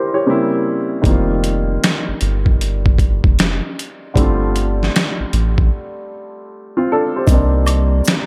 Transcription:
Already playing: C#3 G3 A#3 C4 E4 G4 A#4 C5
0.14 G4 C#5
0.26 C#3 G3 A#3 C4 E4
1.02 F1 D#3 G3 A#3, kick, closed hi-hat
1.07 C4 F4
1.44 closed hi-hat
1.84 snare, closed hi-hat
2.08 G1
2.21 G1, closed hi-hat
2.46 kick
2.61 closed hi-hat
2.86 kick
2.98 kick, closed hi-hat
3.24 F1, kick
3.39 snare, closed hi-hat
3.79 closed hi-hat
4.14 G1 D3 G3 A3, kick, closed hi-hat
4.19 C4 F4
4.56 closed hi-hat
4.83 snare
4.96 snare, closed hi-hat
5.20 A1
5.33 A1, closed hi-hat
5.58 kick
6.77 C4 F4
6.92 D4 A4
7.16 G4 C5
7.27 C2 G3 A#3 C4 D#4 D5 A#5, kick, closed hi-hat, shaker
7.32 C4 D4
7.67 closed hi-hat, high woodblock, shaker
8.05 snare, closed hi-hat, shaker

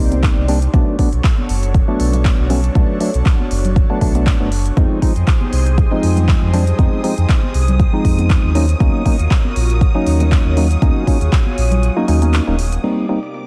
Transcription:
Already playing: G3 A#3 C4 D#4 G4 C5 D5
0.00 C2
0.12 closed hi-hat, high conga
0.23 kick, clap, closed hi-hat
0.37 C2
0.48 G3 A#3 C4 D4, open hi-hat
0.62 closed hi-hat
0.74 B1 F#3 A3 B3 D4 F#4 A4 C#5, kick, closed hi-hat, high conga
0.99 F#3 A3 B3 D4, kick, open hi-hat
1.13 B1, closed hi-hat
1.24 kick, clap, closed hi-hat
1.38 high conga
1.49 F#1, open hi-hat
1.63 closed hi-hat
1.74 kick, closed hi-hat
1.88 F#3 A3 B3 D4
2.00 B1, open hi-hat
2.13 closed hi-hat, high conga, low conga
2.25 kick, clap, closed hi-hat
2.39 B1
2.50 F#3 A3 B3 C#4, open hi-hat, low conga
2.64 closed hi-hat
2.75 B1 F#3 A3 B3 D4, kick, closed hi-hat, high conga
3.00 F#3 A3 B3 D4, open hi-hat
3.14 B1, closed hi-hat
3.26 kick, clap, closed hi-hat
3.40 high conga
3.51 F#1, open hi-hat
3.65 closed hi-hat, low conga
3.76 kick, closed hi-hat
3.90 F#3 A3 B3 D4
4.01 B1 F#3 A3 B3 D4, kick, open hi-hat
4.15 F#3 A3 B3 D4, closed hi-hat, high conga
4.27 kick, clap, closed hi-hat
4.40 F#1 F#3 A3 B3 D4
4.52 open hi-hat
4.66 closed hi-hat
4.77 F2 F3 G#3 C4 D#4 G4 G#4 C5 D#6, kick, closed hi-hat, high conga
5.02 F3 G#3 C4 D#4, kick, open hi-hat
5.16 F2, closed hi-hat
5.27 kick, clap, closed hi-hat
5.41 high conga
5.53 C2, open hi-hat
5.66 closed hi-hat
5.78 kick, closed hi-hat
5.91 F3 G#3 C4 D#4
6.03 F2, open hi-hat
6.16 closed hi-hat, high conga, low conga
6.28 kick, clap, closed hi-hat
6.42 F2
6.53 F3 G#3 C4 D4, open hi-hat, low conga
6.67 closed hi-hat
6.79 F2 F3 G#3 C4 D#4, kick, closed hi-hat, high conga
7.04 F3 G#3 C4 D#4, open hi-hat
7.18 F2, closed hi-hat
7.29 kick, clap, closed hi-hat
7.43 high conga
7.54 C2, open hi-hat
7.68 closed hi-hat, low conga
7.80 kick, closed hi-hat
7.93 F3 G#3 C4 D#4
8.05 F2, kick, open hi-hat
8.19 closed hi-hat, high conga
8.30 kick, clap, closed hi-hat
8.44 D#2
8.55 F#3 A#3 C#4 D#4 F4 F#4 A#4 C#5, open hi-hat
8.69 closed hi-hat
8.80 D#2 F#3 A#3 C#4 D#4, kick, closed hi-hat, high conga
9.05 F#3 A#3 C#4 D#4, kick, open hi-hat
9.19 D#2, closed hi-hat
9.31 kick, clap, closed hi-hat
9.45 high conga
9.56 A#1, open hi-hat
9.70 closed hi-hat
9.81 kick, closed hi-hat
9.95 F#3 A#3 C#4 D#4
10.06 D#2, open hi-hat
10.20 closed hi-hat, high conga, low conga
10.32 kick, clap, closed hi-hat
10.45 D#2
10.57 F#3 A#3 C#4 D#4 G#4, open hi-hat, low conga
10.71 closed hi-hat
10.82 D#2 F#3 A#3 C#4 D#4, kick, closed hi-hat, high conga
11.07 F#3 A#3 C#4 D#4, kick, open hi-hat
11.21 D#2, closed hi-hat
11.32 kick, clap, closed hi-hat
11.46 high conga
11.58 A#1, open hi-hat
11.71 closed hi-hat, low conga
11.83 closed hi-hat
11.96 F#3 A#3 C#4 D#4
12.08 D#2 F#3 A#3 C#4 D#4, open hi-hat
12.22 F#3 A#3 C#4 D#4, closed hi-hat, high conga
12.34 clap, closed hi-hat
12.47 D#1 F#3 A#3 C#4 D#4
12.59 open hi-hat
12.72 closed hi-hat
12.84 C3 G3 A#3 C4 D#4 G4 A#4 D5 D6, closed hi-hat, crash
13.09 G3 A#3 C4 D#4
13.23 closed hi-hat
13.34 closed hi-hat

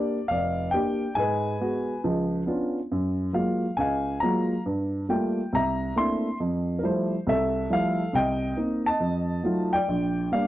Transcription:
Already playing: A#3 D4 G4 D5
0.28 F1 D5 F5
0.71 A#3 D4 G4 G5
1.15 G#2 B4 G#5
1.61 G#3 B3 F#4
2.04 C#2 F3
2.46 B3 C#4 D4 F4
2.92 F#2
3.33 F#3 G#3 A#3 F4 F5
3.77 C#2 F5 G#5
4.20 F#3 G#3 A#3 F4 A#5
4.66 G2
5.09 G3 A3 A#3 F4 G5
5.53 C2 E5 A#5
5.96 A3 A#3 C4 D4 E4 C6
6.40 F2
6.79 A#4
6.83 F3 G3 A3 E4 C5
7.27 C2 A4 E5
7.70 F3 G3 A3 E4 F5
8.13 C2 C3 D#5 G5
8.57 A#3 C4 D#4
8.86 D#5 A5
9.00 F2
9.44 F#3 A3 D#4 F4
9.73 D5 G5
9.88 A#1
10.32 G3 A#3 D4 F5

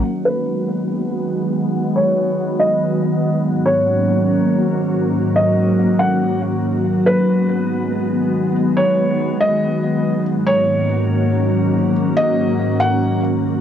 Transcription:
0.04 D#3 F#3 G#3 B3 F#4
0.25 B4
1.96 C#5
2.60 D#5
3.44 G#2 A#3 C#4
3.66 C#5
5.36 D#5
5.99 F#5
6.85 D#3 G#3 B3
7.06 B4
8.77 C#5
9.41 D#5
10.25 G#2 F#3 A#3 C#4 F#4
10.47 C#5
12.17 D#5
12.80 F#5

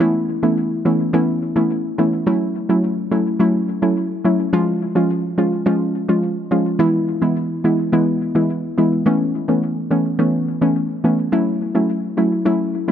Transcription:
0.00 E3 A3 B3 C#4 E4
0.43 E3 A3 B3 C#4 E4
0.85 E3 A3 B3 C#4 E4
1.13 E3 A3 B3 C#4 E4
1.56 E3 A3 B3 C#4 E4
1.98 E3 A3 B3 C#4 E4
2.26 F#3 A3 C#4 E4
2.69 F#3 A3 C#4 E4
3.11 F#3 A3 C#4 E4
3.39 F#3 A3 C#4 E4
3.82 F#3 A3 C#4 E4
4.25 F#3 A3 C#4 E4
4.53 F3 G#3 C#4 F4
4.95 F3 G#3 C#4 F4
5.38 F3 G#3 C#4 F4
5.66 F3 G#3 C#4 F4
6.08 F3 G#3 C#4 F4
6.51 F3 G#3 C#4 F4
6.79 E3 G#3 B3 E4
7.21 E3 G#3 B3 E4
7.64 E3 G#3 B3 E4
7.92 E3 G#3 B3 E4
8.35 E3 G#3 B3 E4
8.78 E3 G#3 B3 E4
9.06 E3 A3 B3 C#4
9.48 E3 A3 B3 C#4
9.90 E3 A3 B3 C#4
10.19 E3 A3 B3 C#4
10.61 E3 A3 B3 C#4
11.04 E3 A3 B3 C#4
11.32 F#3 A3 C#4 E4
11.75 F#3 A3 C#4 E4
12.17 F#3 A3 C#4 E4
12.45 F#3 A3 C#4 E4
12.88 F#3 A3 C#4 E4

